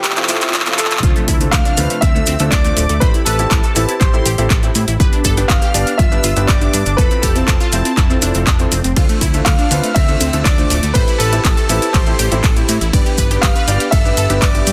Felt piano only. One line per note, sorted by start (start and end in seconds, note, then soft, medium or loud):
0.17 0.26 C4 loud
0.17 0.26 E4 medium
0.17 0.26 F4 medium
0.17 0.26 A4 loud
0.29 0.63 C4 loud
0.29 0.63 E4 medium
0.29 0.63 F4 medium
0.29 0.63 A4 loud
0.66 0.76 C4 medium
0.66 0.76 E4 medium
0.66 0.76 F4 medium
0.66 0.76 A4 medium
1.03 1.38 C4 medium
1.03 1.38 D4 medium
1.03 1.38 F4 medium
1.03 1.38 A4 medium
1.41 1.75 C4 medium
1.41 1.75 D4 medium
1.41 1.75 F4 medium
1.41 1.75 A4 medium
1.78 1.94 C4 medium
1.78 1.94 D4 medium
1.78 1.94 F4 medium
1.78 1.94 B4 loud
2.15 2.25 C4 loud
2.15 2.25 D4 medium
2.15 2.25 F4 medium
2.15 2.25 A4 loud
2.40 2.50 C4 medium
2.40 2.50 D4 medium
2.40 2.50 F4 medium
2.40 2.50 A4 loud
2.65 2.80 C4 medium
2.65 2.80 D4 medium
2.65 2.81 F4 medium
2.65 2.81 C5 medium
3.02 3.36 C4 medium
3.02 3.36 E4 medium
3.02 3.36 G4 medium
3.02 3.36 A4 loud
3.39 3.73 C4 medium
3.39 3.73 E4 medium
3.39 3.73 G4 medium
3.39 3.73 A4 medium
3.76 3.92 C4 medium
3.76 3.92 E4 medium
3.76 3.92 G4 medium
3.76 3.92 B4 loud
4.13 4.23 C4 medium
4.13 4.23 E4 medium
4.13 4.23 G4 medium
4.13 4.23 A4 loud
4.38 4.48 C4 medium
4.38 4.48 E4 medium
4.38 4.48 G4 medium
4.38 4.48 A4 loud
4.63 4.79 C4 medium
4.63 4.79 E4 medium
4.63 4.79 G4 medium
4.63 4.79 C5 medium
5.00 5.34 B3 medium
5.00 5.34 D4 medium
5.00 5.34 G4 medium
5.00 5.34 B4 medium
5.37 5.71 B3 medium
5.37 5.71 D4 medium
5.37 5.71 G4 medium
5.37 5.71 B4 loud
5.74 5.91 B3 medium
5.74 5.91 D4 medium
5.74 5.90 G4 medium
5.74 5.91 D5 loud
6.12 6.21 B3 medium
6.12 6.21 D4 medium
6.12 6.21 G4 medium
6.12 6.21 B4 loud
6.36 6.46 B3 medium
6.36 6.46 D4 medium
6.36 6.46 G4 medium
6.36 6.46 B4 loud
6.61 6.77 B3 medium
6.61 6.77 D4 medium
6.61 6.77 G4 medium
6.61 6.77 E5 medium
6.98 7.33 C4 medium
6.98 7.33 E4 medium
6.98 7.33 F4 medium
6.98 7.33 A4 loud
7.36 7.70 C4 medium
7.36 7.70 E4 medium
7.36 7.70 F4 medium
7.36 7.70 A4 medium
7.73 7.89 C4 medium
7.73 7.89 E4 medium
7.73 7.89 F4 medium
7.73 7.89 C5 loud
8.10 8.20 C4 medium
8.10 8.20 E4 medium
8.10 8.20 F4 medium
8.10 8.20 A4 loud
8.22 8.57 C4 loud
8.22 8.57 E4 medium
8.22 8.57 F4 medium
8.22 8.57 A4 loud
8.60 8.69 C4 medium
8.60 8.70 E4 medium
8.60 8.70 F4 medium
8.60 8.70 A4 medium
8.97 9.31 C4 medium
8.97 9.31 D4 medium
8.97 9.31 F4 medium
8.97 9.31 A4 loud
9.34 9.68 C4 medium
9.34 9.68 D4 medium
9.34 9.68 F4 medium
9.34 9.68 A4 medium
9.71 9.87 C4 medium
9.71 9.87 D4 medium
9.71 9.87 F4 medium
9.71 9.87 B4 loud
10.08 10.18 C4 medium
10.08 10.18 D4 medium
10.08 10.18 F4 medium
10.08 10.18 A4 loud
10.33 10.43 C4 medium
10.33 10.43 D4 medium
10.33 10.43 F4 medium
10.33 10.43 A4 loud
10.58 10.74 C4 medium
10.58 10.74 D4 medium
10.58 10.74 F4 medium
10.58 10.74 C5 medium
10.95 11.29 C4 medium
10.95 11.29 E4 medium
10.95 11.29 G4 medium
10.95 11.29 A4 loud
11.33 11.67 C4 medium
11.33 11.66 E4 medium
11.33 11.67 G4 medium
11.33 11.67 A4 medium
11.69 11.86 C4 medium
11.69 11.86 E4 medium
11.69 11.86 G4 medium
11.69 11.86 B4 loud
12.07 12.17 C4 medium
12.07 12.17 E4 medium
12.07 12.17 G4 medium
12.07 12.17 A4 loud
12.32 12.41 C4 loud
12.32 12.41 E4 medium
12.32 12.41 G4 medium
12.32 12.41 A4 loud
12.56 12.72 C4 medium
12.56 12.72 E4 medium
12.56 12.72 G4 medium
12.56 12.72 C5 medium
12.93 13.28 B3 medium
12.93 13.28 D4 medium
12.93 13.28 G4 medium
12.93 13.28 B4 loud
13.31 13.65 B3 medium
13.31 13.65 D4 medium
13.31 13.65 G4 medium
13.31 13.65 B4 loud
13.67 13.84 B3 medium
13.67 13.84 D4 medium
13.67 13.84 G4 medium
13.67 13.84 D5 loud
14.05 14.15 B3 medium
14.05 14.15 D4 medium
14.05 14.15 G4 medium
14.05 14.15 B4 loud
14.30 14.40 B3 medium
14.30 14.40 D4 medium
14.30 14.40 G4 medium
14.30 14.40 B4 loud
14.55 14.71 B3 medium
14.55 14.71 D4 medium
14.55 14.71 G4 medium
14.55 14.71 E5 medium